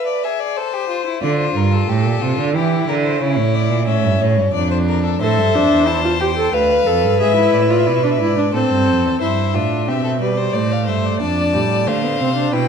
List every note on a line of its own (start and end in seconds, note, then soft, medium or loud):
0.00 0.26 B4 medium
0.07 0.25 D5 medium
0.23 0.59 G#4 medium
0.23 0.41 E5 medium
0.40 0.58 D5 medium
0.56 0.75 A4 medium
0.56 1.22 C5 medium
0.74 0.89 G4 medium
0.89 1.06 F4 medium
1.06 1.22 E4 medium
1.22 1.53 D3 medium
1.22 1.90 F4 medium
1.22 1.38 D5 medium
1.39 1.57 C5 medium
1.56 1.88 G2 medium
1.56 1.74 A#4 medium
1.72 2.55 A4 medium
1.89 2.07 A2 medium
1.89 2.23 G4 medium
2.05 2.21 A#2 medium
2.22 2.38 C3 medium
2.22 2.54 F4 medium
2.38 2.56 D3 medium
2.55 2.87 E3 medium
2.55 3.20 E4 medium
2.55 2.87 G4 medium
2.88 3.22 D3 medium
2.88 2.95 A#4 medium
3.05 3.23 C5 medium
3.20 3.39 C#3 medium
3.20 3.86 E4 medium
3.20 3.56 C#5 medium
3.37 3.71 A2 medium
3.54 3.87 D5 medium
3.70 3.88 A#2 medium
3.87 4.05 A2 medium
3.87 4.53 C#4 medium
3.87 4.23 E5 medium
4.04 4.20 G2 medium
4.21 4.39 A2 medium
4.21 4.53 C#5 medium
4.37 4.53 G2 medium
4.53 5.19 F2 medium
4.53 5.19 D4 medium
4.53 4.70 D5 medium
4.71 4.78 C5 medium
4.88 5.03 A#4 medium
5.04 5.20 A4 medium
5.21 5.39 A2 medium
5.21 5.56 A4 medium
5.21 6.55 C5 medium
5.21 5.89 E5 medium
5.38 5.56 G2 medium
5.55 5.71 F2 medium
5.55 5.89 D4 medium
5.71 6.52 E2 medium
5.87 6.03 E4 medium
5.87 6.22 A5 medium
6.04 6.11 F4 medium
6.20 6.27 G4 medium
6.20 6.54 G5 medium
6.37 6.53 A4 medium
6.53 6.86 D2 medium
6.53 8.53 B4 medium
6.53 6.88 B4 medium
6.53 7.20 F5 medium
6.87 7.05 F2 medium
6.87 7.20 A4 medium
7.04 7.21 G2 medium
7.20 7.53 G#2 medium
7.20 7.36 G#4 medium
7.20 7.55 E5 medium
7.36 7.72 E4 medium
7.54 7.89 A2 medium
7.54 7.63 D5 medium
7.62 7.72 E5 medium
7.70 7.88 F4 medium
7.70 7.79 D5 medium
7.78 7.88 E5 medium
7.86 8.22 B2 medium
7.86 8.03 E4 medium
7.86 7.96 D5 medium
7.95 8.04 E5 medium
8.02 8.11 D4 medium
8.02 8.12 D5 medium
8.11 8.20 E5 medium
8.18 8.53 G#2 medium
8.18 8.37 E4 medium
8.18 8.53 D5 medium
8.37 8.44 D4 medium
8.53 8.60 A2 medium
8.53 9.20 C4 medium
8.53 9.20 A4 medium
8.53 9.20 C5 medium
8.71 8.89 G2 medium
8.88 9.06 F2 medium
9.04 9.21 E2 medium
9.21 9.56 G2 medium
9.21 9.56 E4 medium
9.21 9.56 C5 medium
9.21 9.84 E5 medium
9.54 9.89 A2 medium
9.54 9.90 D4 medium
9.54 9.90 F4 medium
9.88 10.54 B2 medium
9.88 10.21 C4 medium
9.88 10.03 G4 medium
9.88 10.21 E5 medium
10.04 10.11 A4 medium
10.20 10.56 G3 medium
10.20 10.39 B4 medium
10.20 10.56 D5 medium
10.37 10.55 C5 medium
10.53 10.89 A2 medium
10.53 11.22 A3 medium
10.53 10.73 C5 medium
10.53 10.85 D5 medium
10.72 10.90 F5 medium
10.86 11.20 G2 medium
10.86 11.19 C5 medium
10.86 11.06 E5 medium
11.05 11.21 D5 medium
11.20 11.55 F2 medium
11.20 11.55 D4 medium
11.20 11.88 D5 medium
11.20 11.89 A5 medium
11.54 11.88 A2 medium
11.54 11.88 G3 medium
11.86 12.21 D3 medium
11.86 12.05 A3 medium
11.86 12.54 C5 medium
11.86 12.53 F5 medium
12.03 12.19 B3 medium
12.20 12.52 C3 medium
12.20 12.36 C4 medium
12.36 12.54 D4 medium
12.52 12.68 B2 medium
12.52 12.68 E4 medium
12.52 12.68 B4 medium
12.52 12.68 G5 medium